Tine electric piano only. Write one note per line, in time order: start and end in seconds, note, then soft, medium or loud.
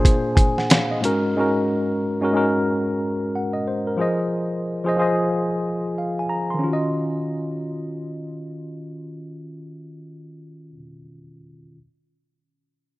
0.00 1.05 A#2 medium
0.00 1.05 A#3 medium
0.00 1.05 D4 medium
0.00 1.05 G#4 medium
0.00 1.05 C5 loud
0.36 0.55 G#5 medium
0.58 0.70 F#5 medium
0.70 0.89 F5 medium
0.91 1.34 D#5 medium
1.00 1.30 G#2 medium
1.00 1.31 G#3 medium
1.00 1.31 C#4 medium
1.00 1.32 F#4 medium
1.05 1.33 A#4 loud
1.36 2.04 G#2 medium
1.36 2.05 G#3 medium
1.36 2.05 C#4 medium
1.36 2.06 F#4 medium
1.40 2.07 A#4 medium
2.20 2.31 G#2 medium
2.20 2.32 G#3 medium
2.20 2.33 C#4 medium
2.20 2.34 F#4 medium
2.25 2.34 A#4 medium
2.32 3.44 G#2 medium
2.32 3.45 G#3 medium
2.32 3.46 C#4 medium
2.32 3.46 F#4 medium
2.37 3.35 A#4 medium
3.35 3.54 F#5 medium
3.53 3.66 D#5 medium
3.68 3.86 C5 medium
3.87 4.18 A#4 medium
3.97 4.67 F3 medium
3.97 4.67 F4 medium
3.97 4.68 G#4 medium
3.97 4.69 C5 medium
4.01 4.69 D#5 medium
4.84 4.96 F3 medium
4.84 4.96 F4 medium
4.84 4.97 G#4 medium
4.84 4.97 C5 medium
4.89 4.98 D#5 medium
4.97 6.09 F3 medium
4.97 6.09 F4 medium
4.97 6.10 G#4 medium
4.97 6.10 C5 medium
5.02 6.11 D#5 medium
5.98 6.17 F5 medium
6.19 6.31 G#5 medium
6.29 6.49 A#5 medium
6.50 10.69 D#3 medium
6.50 6.82 C6 medium
6.59 10.71 C#4 medium
6.64 10.73 F4 medium
6.69 10.76 F#4 medium
6.73 10.78 D#5 medium